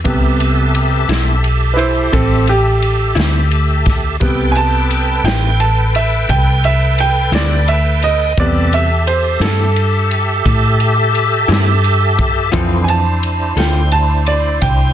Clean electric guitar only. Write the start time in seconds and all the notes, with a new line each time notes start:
1.09 A2 G3 C4 E4
3.15 A2 G3 C4 E4
5.25 A2 G3 C4 E4
7.32 A2 G3 C4 E4
9.41 A2 G3 C4 E4
11.48 A2 G3 C4 E4
12.52 D3 C4 F4 A4
13.57 D3 C4 F4 A4